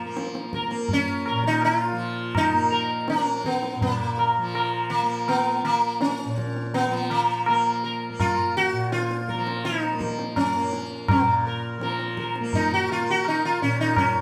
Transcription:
Already playing: tanpura A#2 F3 A#3, sitar A#3
0.06 tanpura A#3
0.17 tabla te
0.35 tabla te
0.53 sitar A#4, tabla ke
0.68 tanpura A#3, tabla te
0.88 tabla tin, tabla ge
0.93 sitar C#4
1.26 sitar A#4, tabla na
1.31 tanpura A#2
1.44 sitar D#4, tabla ke
1.62 sitar F4, tabla na
1.92 tanpura F3
2.35 sitar D#4, tabla na, tabla ge
2.53 tanpura A#3
2.72 sitar A#4
3.08 sitar C#4, tabla te
3.15 tanpura A#3
3.26 tabla te
3.44 sitar B3, tabla ke
3.63 tabla te
3.76 tanpura A#2
3.81 sitar B3, tabla tin, tabla ge
3.94 sitar A#3
4.18 sitar A#4, tabla na
4.38 tanpura F3
4.55 sitar A#4, tabla na
4.90 sitar A#3
5.02 tanpura A#3
5.28 sitar B3, tabla na
5.62 tanpura A#3, sitar A#3, tabla na
6.01 sitar C#4, tabla te
6.20 tabla te
6.25 tanpura A#2
6.38 tabla ke
6.56 tabla te
6.74 sitar B3, tabla tin
6.87 tanpura F3
7.10 sitar A#3, tabla na
7.46 tanpura A#3, sitar A#4, tabla na
7.84 sitar A#4
8.10 tanpura A#3
8.20 sitar F4, tabla na, tabla ge
8.57 sitar F#4
8.73 tanpura A#2
8.92 sitar F4, tabla te
9.11 tabla te
9.29 sitar A#4, tabla ke
9.34 tanpura F3
9.47 tabla te
9.65 sitar D#4, tabla te
9.83 tabla te
9.94 tanpura A#3
10.01 tabla ke
10.19 tabla te
10.36 sitar C#4, tabla na, tabla ge
10.56 tanpura A#3
10.73 tabla te
11.08 sitar A#3, tabla na, tabla ge
11.17 tanpura A#2
11.47 sitar A#4
11.78 tanpura F3, tabla te
11.83 sitar A#4
12.00 tabla te
12.17 sitar A#4, tabla ke
12.36 tabla te
12.40 tanpura A#3
12.53 sitar D#4, tabla tin, tabla ge
12.74 sitar F#4
12.89 sitar F4, tabla na
13.01 tanpura A#3
13.10 sitar F#4
13.25 sitar D#4, tabla na
13.45 sitar F4
13.62 tanpura A#2, sitar C#4
13.81 sitar D#4
13.96 sitar C#4, tabla na, tabla ge

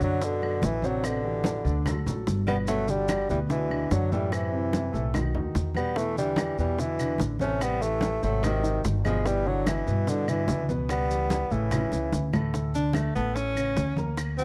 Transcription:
0.00 upright bass F#2, grand piano D3 D4 D5, tenor saxophone D3, high bongo, maracas
0.04 bassoon F#3
0.22 tenor saxophone B2, bassoon D3, grand piano F#3 F#4 A4, high bongo, high conga, maracas
0.42 grand piano F#3 F#4 A4, high bongo, high conga, claves
0.62 upright bass A1, tenor saxophone B2, bassoon E3, high bongo, low bongo, high conga, maracas
0.82 grand piano C3 C4 C5, tenor saxophone D3, bassoon F#3, high conga, maracas
1.03 tenor saxophone B2, bassoon D3, high bongo, high conga, claves, maracas
1.23 grand piano E3 E4 G4, high conga
1.44 high bongo, high conga, maracas
1.64 upright bass D2, grand piano D3 D4 D5, high bongo, high conga, maracas
1.86 grand piano F#3 F#4 A4, high bongo, high conga, low conga, claves, maracas
2.06 upright bass A1, grand piano F#3 F#4 A4, high bongo, high conga, low conga, maracas
2.27 upright bass G1, high bongo, low bongo, high conga, maracas
2.47 grand piano B2 B3 B4, tenor saxophone G3, bassoon B3, high bongo, high conga, claves, maracas
2.67 grand piano B2 B3 B4, tenor saxophone F#3, bassoon A3, high bongo, high conga, maracas
2.88 grand piano D3 D4 F#4, tenor saxophone D3, bassoon G3, high bongo, high conga, maracas
3.09 high bongo, high conga, claves, maracas
3.29 upright bass D2, grand piano B2 B3 B4, tenor saxophone E3, bassoon G3, high bongo, maracas
3.49 tenor saxophone B2, grand piano D3 D4 F#4, bassoon E3, high bongo, high conga, maracas
3.69 grand piano D3 D4 F#4, high bongo, high conga, claves
3.91 upright bass F#2, tenor saxophone D3, bassoon F#3, high bongo, low bongo, high conga, maracas
4.12 grand piano A2 A3 A4, tenor saxophone E3, bassoon G3, high conga, maracas
4.32 tenor saxophone C3, bassoon E3, high bongo, high conga, claves, maracas
4.52 grand piano C3 C4 E4, high conga
4.73 high bongo, high conga, maracas
4.92 upright bass B1, grand piano A2 A3 A4, high bongo, high conga, maracas
5.14 grand piano D#3 D#4 F#4, high bongo, high conga, low conga, claves, maracas
5.35 upright bass D#2, grand piano D#3 D#4 F#4, high bongo, high conga, low conga
5.55 upright bass E2, high bongo, low bongo, high conga, maracas
5.75 grand piano B2 B3 B4, tenor saxophone G3, bassoon B3, high bongo, high conga, claves, maracas
5.96 grand piano B2 B3 B4, tenor saxophone E3, bassoon A3, high bongo, high conga, maracas
6.16 grand piano D3 D4 E4, tenor saxophone E3, bassoon G3, high bongo, high conga, maracas
6.36 high bongo, high conga, claves, maracas
6.58 upright bass E2, grand piano B2 B3 B4, tenor saxophone E3, bassoon G3, high bongo, maracas
6.78 tenor saxophone B2, grand piano D3 D4 E4, bassoon E3, high bongo, high conga, maracas
6.98 grand piano D3 D4 E4, high bongo, high conga, claves, maracas
7.18 upright bass A1, high bongo, low bongo, high conga, maracas
7.39 grand piano C3 C4 C5, tenor saxophone A3, bassoon C#4, high conga, maracas
7.61 tenor saxophone G3, bassoon B3, high bongo, high conga, claves, maracas
7.81 grand piano E3 E4 G4, tenor saxophone E3, bassoon A3, high conga, maracas
8.01 high bongo, high conga, maracas
8.22 upright bass G#1, grand piano C3 C4 C5, tenor saxophone F#3, bassoon A3, high bongo, high conga, maracas
8.43 tenor saxophone C3, grand piano D#3 D#4 F#4, bassoon D#3, high bongo, high conga, low conga, claves, maracas
8.63 grand piano D#3 D#4 F#4, high bongo, high conga, maracas
8.84 upright bass G1, high bongo, low bongo, high conga, maracas
9.04 grand piano B2 B3 B4, tenor saxophone F3, bassoon G#3, high bongo, high conga, claves, maracas
9.25 grand piano B2 B3 B4, tenor saxophone E3, bassoon G3, high bongo, high conga, maracas
9.46 grand piano D3 D4 E4, tenor saxophone D3, bassoon F#3, high bongo, high conga
9.67 tenor saxophone B2, bassoon E3, high bongo, high conga, claves, maracas
9.87 upright bass G2, grand piano B2 B3 B4, high bongo, maracas
10.07 tenor saxophone B2, grand piano D3 D4 E4, bassoon D3, high bongo, high conga, maracas
10.28 tenor saxophone B2, grand piano D3 D4 E4, bassoon E3, high bongo, high conga, claves, maracas
10.48 upright bass C#2, high bongo, low bongo, high conga, maracas
10.69 grand piano B2 B3 B4, high conga, maracas
10.89 tenor saxophone G3, bassoon B3, high bongo, high conga, claves, maracas
11.10 grand piano E3 E4 G4, high conga, maracas
11.30 high bongo, high conga, maracas
11.50 upright bass A1, grand piano A2 A3 A4, tenor saxophone C#3, bassoon E3, high bongo, high conga, maracas
11.71 grand piano C#3 C#4 E4, high bongo, high conga, low conga, claves, maracas
11.92 upright bass C#2, grand piano C#3 C#4 E4, high bongo, high conga, maracas
12.12 upright bass D2, high bongo, high conga, maracas
12.33 grand piano A2 A3 A4, low bongo, high conga, claves, maracas
12.54 grand piano A2 A3 A4, high bongo, high conga, maracas
12.74 grand piano D3 D4 D5, tenor saxophone D4, high bongo, high conga, maracas
12.93 tenor saxophone A3, high bongo, high conga, claves, maracas
13.15 upright bass A1, grand piano A3 A4 A5, tenor saxophone B3, high bongo, maracas
13.35 tenor saxophone C#4, high bongo, high conga, maracas
13.55 grand piano C#3 C#4 C#5, high bongo, high conga, claves, maracas
13.76 upright bass D2, high bongo, low bongo, high conga, maracas
13.97 grand piano A#3 A#4 A#5, high conga, maracas
14.17 high bongo, high conga, claves, maracas
14.38 grand piano F#3 F#4 F#5, tenor saxophone C4, high conga, maracas

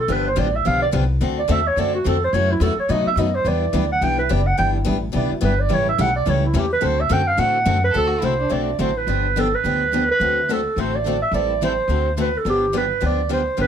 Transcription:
0.00 clarinet A4
0.08 upright bass G1, steel-string acoustic guitar D3 F3 B3 D4 G4
0.12 clarinet B4
0.28 clarinet C5
0.36 upright bass A1, steel-string acoustic guitar D3 F3 B3 D4 G4, clarinet D5
0.56 clarinet E5
0.65 upright bass B1, steel-string acoustic guitar D3 F3 B3 D4 G4, clarinet F5
0.82 clarinet D5
0.91 upright bass C2, steel-string acoustic guitar D3 F3 B3 D4 G4
1.21 upright bass D2, steel-string acoustic guitar D3 A3 C4 F#4 A4
1.39 clarinet D5
1.48 upright bass E2, steel-string acoustic guitar D3 A3 C4 F#4 A4, clarinet E5
1.67 clarinet C#5
1.76 upright bass F#2, steel-string acoustic guitar D3 A3 C4 F#4 A4, clarinet D5
1.95 clarinet F#4
2.04 upright bass F2, steel-string acoustic guitar D3 A3 C4 F#4 A4, clarinet A4
2.24 clarinet C5
2.33 upright bass F#2, steel-string acoustic guitar C#3 E3 F#3 A3 C#4 E4 F#4 A4, clarinet C#5
2.51 clarinet E4
2.60 upright bass E2, steel-string acoustic guitar C#3 E3 F#3 A3 C#4 E4 F#4 A4, clarinet A4
2.76 clarinet C#5, muted upright bass stroke
2.88 steel-string acoustic guitar B2 F#3 A3 D#4 F#4 B4, upright bass B2, clarinet D#5
3.05 clarinet E5, muted upright bass stroke
3.16 upright bass F#2, steel-string acoustic guitar B2 F#3 A3 D#4 F#4 B4, clarinet D#5
3.35 clarinet C5
3.44 upright bass E2, steel-string acoustic guitar E3 G3 B3 D4 E4 G4 B4, clarinet D5
3.73 upright bass D2, steel-string acoustic guitar E3 G3 B3 D4 E4 G4 B4
3.92 clarinet F#5
4.01 upright bass B1, steel-string acoustic guitar E3 G3 B3 D4 E4 G4 B4, clarinet G5
4.19 clarinet B4
4.29 upright bass F#1, steel-string acoustic guitar E3 G3 B3 D4 E4 G4 B4, clarinet D5
4.47 clarinet F#5
4.58 upright bass G1, steel-string acoustic guitar E3 G3 B3 D4 E4 G4 B4, clarinet G5
4.85 upright bass A1, steel-string acoustic guitar E3 G3 B3 D4 E4 G4 B4
5.13 upright bass B1, steel-string acoustic guitar E3 G3 B3 D4 E4 G4 B4, clarinet D5
5.31 clarinet F#4, muted upright bass stroke
5.41 upright bass G1, steel-string acoustic guitar E3 G3 B3 D4 E4 G4 B4, clarinet B4
5.60 clarinet D5
5.69 upright bass A1, steel-string acoustic guitar C#3 E3 G3 A3 C#4 E4 G4 A4
5.74 clarinet C#5
5.89 clarinet E5
5.98 upright bass B1, steel-string acoustic guitar C#3 E3 G3 A3 C#4 E4 G4 A4, clarinet F#5
6.16 clarinet D5
6.25 upright bass C#2, steel-string acoustic guitar C#3 E3 G3 A3 C#4 E4 G4 A4
6.29 clarinet C#5
6.46 clarinet E4
6.54 upright bass E2, steel-string acoustic guitar C#3 E3 G3 A3 C#4 E4 G4 A4
6.58 clarinet G4
6.73 clarinet B4
6.82 upright bass D2, steel-string acoustic guitar D3 A3 C4 F#4 A4, clarinet C5
7.00 clarinet E5
7.10 upright bass F#2, steel-string acoustic guitar D3 A3 C4 F#4 A4, clarinet G5
7.27 clarinet F5
7.37 upright bass A2, steel-string acoustic guitar D3 A3 C4 F#4 A4, clarinet F#5
7.66 upright bass F#2, steel-string acoustic guitar D3 A3 C4 F#4 A4
7.84 clarinet B4
7.91 upright bass D2, steel-string acoustic guitar D3 A3 C4 F#4 A4, violin A4
7.96 clarinet A4
8.08 violin F#4
8.21 upright bass C2, steel-string acoustic guitar D3 A3 C4 F#4 A4, violin E4, clarinet C5
8.39 violin D4
8.51 upright bass B1, steel-string acoustic guitar D3 A3 C4 F#4 A4, clarinet D5
8.79 upright bass A1, steel-string acoustic guitar D3 A3 C4 F#4 A4, clarinet C5
8.97 clarinet B4
9.07 upright bass G1, steel-string acoustic guitar D3 F3 B3 D4 G4
9.36 steel-string acoustic guitar D3 F3 B3 D4 G4, clarinet A4
9.55 clarinet B4
9.64 upright bass D2, steel-string acoustic guitar D3 F3 B3 D4 G4
9.91 steel-string acoustic guitar D3 F3 B3 D4 G4
10.11 clarinet B4
10.20 upright bass D2, steel-string acoustic guitar D3 A3 C4 F#4 A4
10.48 steel-string acoustic guitar D3 A3 C4 F#4 A4, clarinet A4
10.76 upright bass A1, steel-string acoustic guitar D3 A3 C4 F#4 A4, clarinet C5
10.95 clarinet D5
11.04 steel-string acoustic guitar D3 A3 C4 F#4 A4
11.22 clarinet E5
11.31 upright bass A1, steel-string acoustic guitar E3 G3 C4 E4 A4, clarinet D5
11.61 steel-string acoustic guitar E3 G3 C4 E4 A4, clarinet C5
11.88 upright bass D2, steel-string acoustic guitar D3 A3 C4 F#4 A4
12.17 steel-string acoustic guitar D3 A3 C4 F#4 A4, clarinet B4
12.37 clarinet A4
12.44 upright bass G1, steel-string acoustic guitar D3 F3 B3 D4 G4
12.50 clarinet G4
12.72 steel-string acoustic guitar D3 F3 B3 D4 G4
12.77 clarinet B4
13.02 upright bass D2, steel-string acoustic guitar D3 F3 B3 D4 G4, clarinet D5
13.29 steel-string acoustic guitar D3 F3 B3 D4 G4
13.33 clarinet C5
13.58 upright bass G1, steel-string acoustic guitar D3 F3 B3 D4 G4, clarinet B4

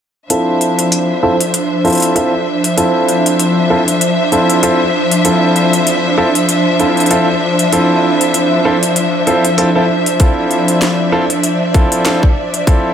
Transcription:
0.30 string section F3 D4 C5 E5, grand piano C4 E4 F4 A4, analog synth pad D4, closed hi-hat
0.61 analog synth pad F3, closed hi-hat
0.79 closed hi-hat
0.84 analog synth pad C5
0.92 closed hi-hat
1.23 grand piano C4 E4 F4 A4
1.40 closed hi-hat
1.54 closed hi-hat
1.84 grand piano C4 E4 F4 A4, closed hi-hat
1.87 closed hi-hat
1.90 closed hi-hat
1.92 closed hi-hat
1.95 closed hi-hat
1.97 closed hi-hat
2.00 closed hi-hat
2.02 closed hi-hat
2.15 grand piano C4 E4 F4 A4, closed hi-hat
2.43 analog synth pad E5
2.64 closed hi-hat
2.77 grand piano C4 E4 F4 A4, closed hi-hat
3.08 closed hi-hat
3.26 closed hi-hat
3.39 closed hi-hat
3.70 grand piano C4 E4 F4 A4
3.88 closed hi-hat
4.01 closed hi-hat
4.32 grand piano C4 E4 F4 A4, closed hi-hat
4.50 closed hi-hat
4.63 grand piano C4 E4 F4 A4, closed hi-hat
5.11 closed hi-hat
5.25 grand piano C4 E4 F4 A4, closed hi-hat
5.56 closed hi-hat
5.73 closed hi-hat
5.87 closed hi-hat
6.18 grand piano C4 E4 F4 A4
6.35 closed hi-hat
6.49 closed hi-hat
6.79 grand piano C4 E4 F4 A4, closed hi-hat
6.97 closed hi-hat
7.00 closed hi-hat
7.06 closed hi-hat
7.11 grand piano C4 E4 F4 A4, closed hi-hat
7.59 closed hi-hat
7.72 grand piano C4 E4 F4 A4, closed hi-hat
8.21 closed hi-hat
8.34 closed hi-hat
8.65 grand piano C4 E4 F4 A4
8.83 closed hi-hat
8.96 closed hi-hat
9.27 grand piano C4 E4 F4 A4, closed hi-hat
9.45 closed hi-hat
9.58 grand piano C4 E4 F4 A4, closed hi-hat
9.75 grand piano C4 E4 F4 A4
10.06 closed hi-hat
10.20 grand piano C4 E4 F4 A4, string section D5, kick, closed hi-hat
10.51 closed hi-hat
10.68 closed hi-hat
10.82 snare, closed hi-hat
11.12 grand piano C4 E4 F4 A4
11.30 closed hi-hat
11.43 closed hi-hat
11.74 grand piano C4 E4 F4 A4, kick, closed hi-hat
11.92 closed hi-hat
12.05 grand piano C4 E4 F4 A4, snare, closed hi-hat
12.23 kick
12.54 closed hi-hat
12.67 grand piano C4 E4 F4 A4, kick, closed hi-hat

